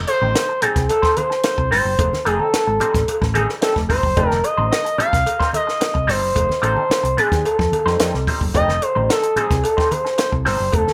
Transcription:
0.07 C5, muted clean electric guitar stroke, closed hi-hat, cowbell
0.21 A1 G3 C4 D#4 C5, high conga
0.35 snare, closed hi-hat, cowbell, muted conga
0.49 muted clean electric guitar stroke
0.61 G3 C4 D#4 G#4 A4, muted fingered electric bass stroke, closed hi-hat, low conga
0.76 C2, muted clean electric guitar stroke, kick, snare, closed hi-hat
0.88 A4, muted clean electric guitar stroke, closed hi-hat, cowbell, muted conga
1.02 G3 C4 D#4 C5, kick, snare
1.16 C5, muted clean electric guitar stroke, closed hi-hat, cowbell, muted conga, high conga
1.30 muted clean electric guitar stroke, snare
1.43 C5, muted clean electric guitar stroke, snare, closed hi-hat, cowbell
1.58 C2, muted clean electric guitar stroke, kick
1.71 G1 G3 C4 D#4 A4 C5, snare, open hi-hat, low conga
1.85 F#1, muted clean electric guitar stroke
1.99 F1, kick, closed hi-hat, cowbell, low conga
2.13 snare, high conga
2.25 F1 G3 C4 D#4 G#4 A4, closed hi-hat, cowbell
2.39 A4, high conga
2.54 muted fingered electric bass stroke, snare, closed hi-hat, cowbell
2.67 G#1, muted clean electric guitar stroke
2.80 G3 C4 D#4 C5, closed hi-hat, muted conga, low conga
2.94 A1, muted clean electric guitar stroke, kick, snare, closed hi-hat
3.08 closed hi-hat, cowbell
3.21 A1, muted clean electric guitar stroke, kick, snare
3.34 G3 C4 D#4 G#4 A4, closed hi-hat, cowbell, high conga
3.48 muted clean electric guitar stroke, snare
3.61 G3 C4 D#4 A4, snare, closed hi-hat, cowbell
3.75 F1, muted clean electric guitar stroke, kick, snare
3.88 G1 G3 C4 D#4 C5, kick, open hi-hat, muted conga, low conga
4.03 F#1, muted clean electric guitar stroke, kick
4.17 F1 G3 C4 D#4 A4, kick, closed hi-hat, cowbell, muted conga, low conga
4.28 A#4, snare, high conga
4.44 D#5, muted clean electric guitar stroke, closed hi-hat, cowbell, muted conga
4.57 A1 G3 C4 D#4 C5, high conga
4.71 D#5, snare, closed hi-hat, cowbell
4.85 muted clean electric guitar stroke, closed hi-hat
4.98 G3 C4 D#4 A4 F5, muted fingered electric bass stroke, closed hi-hat, low conga
5.13 C2, muted clean electric guitar stroke, kick, snare, closed hi-hat
5.26 muted clean electric guitar stroke, closed hi-hat, cowbell, muted conga
5.39 G3 C4 D#4 C5, kick, snare
5.53 D#5, muted clean electric guitar stroke, closed hi-hat, cowbell, high conga
5.67 muted clean electric guitar stroke, snare
5.80 muted clean electric guitar stroke, snare, closed hi-hat, cowbell, muted conga
5.94 C2, muted clean electric guitar stroke, kick
6.07 G1 G3 C4 D#4 A4 C5, snare, open hi-hat, muted conga, low conga
6.21 F#1, muted clean electric guitar stroke
6.35 F1, kick, closed hi-hat, cowbell, muted conga, low conga
6.49 snare, high conga
6.62 A1 G3 C4 D#4 A4 C5, closed hi-hat, cowbell, muted conga
6.77 high conga
6.90 muted fingered electric bass stroke, snare, closed hi-hat, cowbell, muted conga
7.03 C2, muted clean electric guitar stroke, closed hi-hat
7.17 G3 C4 D#4 G#4 C5, closed hi-hat, low conga
7.31 D#2, muted clean electric guitar stroke, kick, snare, closed hi-hat
7.44 A4, muted clean electric guitar stroke, closed hi-hat, cowbell, muted conga
7.59 F2, muted clean electric guitar stroke, kick, snare
7.72 closed hi-hat, cowbell, muted conga, high conga
7.86 F2 G3 C4 D#4 C5, snare
7.99 F2 G3 C4 D#4 A4, snare, closed hi-hat, cowbell
8.14 C2, muted clean electric guitar stroke, snare
8.27 G3 C4 D#4 C5, kick, open hi-hat, muted conga, low conga
8.41 F#1, muted clean electric guitar stroke, kick
8.54 F1 G3 C4 D#4 A4 D#5, kick, closed hi-hat, cowbell, muted conga, low conga
8.69 snare, high conga
8.82 C5, muted clean electric guitar stroke, closed hi-hat, cowbell
8.95 A1 G3 C4 D#4 C5, high conga
9.09 A4, snare, closed hi-hat, cowbell, muted conga
9.23 muted clean electric guitar stroke, closed hi-hat
9.36 G3 C4 D#4 G#4 A4, muted fingered electric bass stroke, closed hi-hat, muted conga, low conga
9.50 C2, muted clean electric guitar stroke, kick, snare, closed hi-hat
9.64 A4, muted clean electric guitar stroke, closed hi-hat, cowbell
9.77 G3 C4 D#4 C5, kick, snare
9.91 C5, muted clean electric guitar stroke, closed hi-hat, cowbell, muted conga, high conga
10.05 muted clean electric guitar stroke, snare
10.18 C5, muted clean electric guitar stroke, snare, closed hi-hat, cowbell
10.32 C2, muted clean electric guitar stroke, kick
10.45 G1 G3 C4 D#4 A4 C5, snare, open hi-hat, low conga
10.59 F#1, muted clean electric guitar stroke
10.72 F1 A4, kick, closed hi-hat, cowbell, muted conga, low conga
10.87 snare, high conga

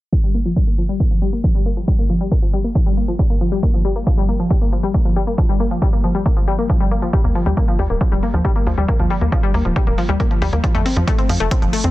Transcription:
0.13 F3, kick
0.23 G3
0.34 A#3, closed hi-hat
0.45 F3, closed hi-hat
0.56 G3, kick
0.67 A#3
0.78 F3
0.89 G3
1.00 A#3, kick
1.11 F3
1.22 G3
1.33 A#3
1.44 F3, kick
1.55 G3
1.66 A#3, closed hi-hat
1.77 F3, closed hi-hat
1.88 G3, kick
1.99 A#3
2.10 F3, closed hi-hat
2.21 G3
2.32 A#3, kick, closed hi-hat
2.42 F3
2.53 G3
2.64 A#3, closed hi-hat
2.75 F3, kick, closed hi-hat
2.86 G3
2.97 A#3, closed hi-hat
3.08 F3, closed hi-hat
3.19 G3, kick, closed hi-hat
3.30 A#3, closed hi-hat
3.41 F3, closed hi-hat
3.52 G3, closed hi-hat
3.63 A#3, kick, closed hi-hat
3.74 F3, closed hi-hat
3.85 G3, closed hi-hat
3.96 A#3, closed hi-hat
4.07 F3, kick, closed hi-hat
4.18 G3, closed hi-hat
4.29 A#3
4.40 F3, closed hi-hat
4.50 G3, kick, closed hi-hat
4.61 A#3, closed hi-hat
4.72 F3, closed hi-hat
4.83 G3, closed hi-hat
4.94 A#3, kick, closed hi-hat
5.05 F3, closed hi-hat
5.16 G3, closed hi-hat
5.27 A#3, closed hi-hat
5.38 F3, kick, closed hi-hat
5.49 G3, closed hi-hat
5.60 A#3, closed hi-hat
5.71 F3, closed hi-hat
5.82 G3, kick, closed hi-hat
5.93 A#3, closed hi-hat
6.04 F3
6.15 G3, closed hi-hat
6.26 A#3, kick, closed hi-hat
6.37 F3, closed hi-hat
6.48 G3, closed hi-hat
6.59 A#3, closed hi-hat
6.69 F3, kick, closed hi-hat
6.80 G3, closed hi-hat
6.91 A#3, closed hi-hat
7.02 F3, closed hi-hat
7.13 G3, kick, closed hi-hat
7.24 D#2 A#3, closed hi-hat
7.35 F3, open hi-hat
7.46 D#2 G3, closed hi-hat
7.57 A#3, kick, closed hi-hat
7.68 F3, closed hi-hat
7.79 D#2 G3, open hi-hat
7.90 D#1 A#3, closed hi-hat
8.01 F3, kick, closed hi-hat
8.12 D#1 G3, closed hi-hat
8.23 A#3, open hi-hat
8.34 D#2 F3, closed hi-hat
8.45 G3, kick, closed hi-hat
8.56 A#3, closed hi-hat
8.67 D#2 F3, open hi-hat
8.78 D#2 G3, closed hi-hat
8.88 A#3, kick, closed hi-hat
8.99 D#2 F3, closed hi-hat
9.10 G3, open hi-hat
9.21 D#2 A#3, closed hi-hat
9.32 F3, kick, closed hi-hat
9.43 G3, closed hi-hat
9.54 D#2 A#3, open hi-hat
9.65 D#1 F3, closed hi-hat
9.76 G3, kick, closed hi-hat
9.87 D#1 A#3, closed hi-hat
9.98 F3, open hi-hat
10.09 D#2 G3, closed hi-hat
10.20 A#3, kick, closed hi-hat
10.31 F3, closed hi-hat
10.42 D#2 G3, open hi-hat
10.53 D#2 A#3, closed hi-hat
10.64 F3, kick, closed hi-hat
10.75 F2 A3, closed hi-hat
10.86 C4, open hi-hat
10.96 F2 F3, closed hi-hat
11.07 A3, kick, closed hi-hat
11.18 C4, closed hi-hat
11.29 F2 F3, open hi-hat
11.40 F1 A3, closed hi-hat
11.51 C4, kick, closed hi-hat
11.62 F1 F3, closed hi-hat
11.73 A3, open hi-hat
11.84 F2 C4, closed hi-hat

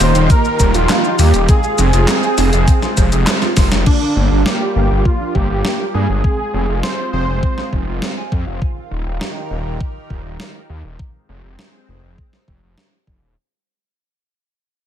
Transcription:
Already playing: D#3 D#4 F4 G4 A#4 C5
0.00 D#1 A#3, open hi-hat, shaker
0.15 D#1 D#4, closed hi-hat, shaker
0.30 A#3 A#4, kick, closed hi-hat, shaker
0.45 D#5, shaker
0.60 D#1 A#3, kick, closed hi-hat, shaker
0.74 D#1 F4 A#4, closed hi-hat, shaker
0.89 A#3, snare, clap, closed hi-hat, shaker
1.04 D#4, shaker
1.19 D#2 A#3 G4, open hi-hat, shaker
1.34 D#1 D#5, closed hi-hat, shaker
1.49 G#3 C4 G#4, kick, closed hi-hat, shaker
1.63 F5, shaker
1.78 F1 C4, closed hi-hat, shaker
1.93 F1 F4, closed hi-hat, shaker
2.08 C4, snare, clap, closed hi-hat, shaker
2.23 G#5, shaker
2.38 F1 C4, open hi-hat, shaker
2.53 F1 F5, closed hi-hat, shaker
2.68 C4, kick, closed hi-hat, shaker
2.82 F4, snare, shaker
2.97 F1 C5, kick, closed hi-hat, shaker
3.12 F1 G#4, closed hi-hat, shaker
3.27 C5, snare, clap, closed hi-hat, shaker
3.42 F4, snare, shaker
3.57 F1 C6, kick, snare, open hi-hat, shaker
3.72 F1 F4, snare, closed hi-hat, shaker
3.86 G3 A#3 D4 F4, kick, crash
4.02 A#4
4.16 G1 A#3
4.31 G1 D4
4.46 A#3 G4, snare
4.61 D5
4.76 G1 A#3
4.90 G1 A#4
5.05 A#3 F4, kick
5.20 D4
5.35 G1 A#3 G4, kick
5.50 G1 D5
5.65 A#3, snare
5.80 A#4
5.94 G2 A#3 G#4
6.09 G1 D4
6.24 G#3 C4 F4, kick
6.39 G#5
6.54 F1 C4
6.69 F1 F5
6.83 C4 C5, snare
6.98 F4
7.13 F1 C4 C5
7.28 F1 G#5
7.43 C4, kick
7.58 F5, snare
7.73 F1 C4, kick
7.87 F1 F4
8.02 C4, snare
8.17 G#5
8.32 F2 C4, kick
8.47 F1 F5
8.62 D#3 D#4 G4 A#4, kick
8.91 D#1
9.06 D#1
9.21 snare
9.51 D#1
9.65 D#1
9.81 kick
10.10 D#1, kick
10.25 D#1
10.40 snare
10.70 D#2
10.84 D#1
10.99 G#3 C4, kick
11.29 F1
11.44 F1
11.59 snare
11.88 F1
12.03 F1
12.18 kick
12.33 snare
12.48 F1, kick
12.63 F1
12.78 snare
13.07 F1, kick
13.22 D#1

